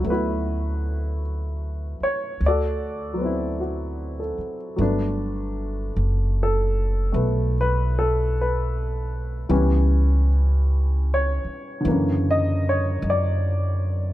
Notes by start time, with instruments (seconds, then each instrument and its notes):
Already playing: grand piano E4 F#4 B4
0.00 grand piano F#3 A3
0.05 upright bass D2, grand piano B3
0.10 grand piano E4 F#4 B4
2.00 grand piano C#5, muted upright bass stroke
2.41 upright bass D2
2.46 grand piano F#4 A4 D5
3.14 grand piano F#3 B3
3.21 grand piano C4 E4
3.60 grand piano F#4
4.20 grand piano A4
4.38 muted upright bass stroke
4.76 upright bass G1, grand piano F#3 A3 B3
4.81 grand piano D4
5.96 upright bass F#1
6.43 grand piano A4
7.12 upright bass B1, grand piano A3 B3
7.61 grand piano B4
7.99 grand piano A4
8.41 grand piano B4
9.49 upright bass C#2, grand piano E3 G3 B3 C#4
11.14 grand piano C#5
11.45 muted upright bass stroke
11.81 grand piano D3 E3
11.85 upright bass F#2, grand piano A#3
11.92 grand piano C#3
12.31 grand piano D#5
12.69 grand piano C#5
13.02 upright bass F#2
13.10 grand piano D5